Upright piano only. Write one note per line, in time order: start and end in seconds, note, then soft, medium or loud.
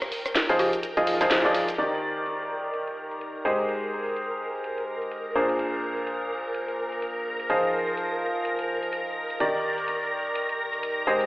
0.49 0.70 F3 loud
0.49 0.70 D#4 medium
0.49 0.70 F4 medium
0.49 0.70 G#4 medium
0.49 0.70 C5 loud
0.97 1.17 F3 loud
0.97 1.17 D#4 medium
0.97 1.17 F4 medium
0.97 1.17 G#4 medium
0.97 1.17 D#5 loud
1.21 1.40 F3 loud
1.21 1.40 D#4 medium
1.21 1.40 F4 medium
1.21 1.40 G#4 medium
1.21 1.40 C5 loud
1.45 1.66 F3 medium
1.45 1.65 D#4 medium
1.45 1.65 F4 medium
1.45 1.65 G#4 medium
1.45 1.65 D5 medium
1.78 3.43 D#3 medium
1.78 3.43 D#4 medium
1.78 3.43 G4 medium
1.78 3.43 A#4 medium
1.78 3.43 D5 medium
3.45 5.33 G#3 medium
3.45 5.33 D#4 medium
3.45 5.33 G4 medium
3.45 5.33 G#4 medium
3.45 5.33 C5 medium
5.35 7.47 A#2 medium
5.35 7.47 D4 medium
5.35 7.47 G#4 medium
5.35 7.47 A#4 medium
5.35 7.47 C5 medium
7.50 9.38 F3 medium
7.50 9.38 D#4 medium
7.50 9.38 F4 medium
7.50 9.38 G#4 medium
7.50 9.38 C5 medium
9.40 11.04 D#3 medium
9.40 11.05 D#4 medium
9.40 11.05 G4 medium
9.40 11.04 A#4 medium
9.40 11.04 D5 medium
11.07 11.26 G#3 medium
11.07 11.26 D#4 medium
11.07 11.26 G4 medium
11.07 11.26 G#4 medium
11.07 11.26 C5 medium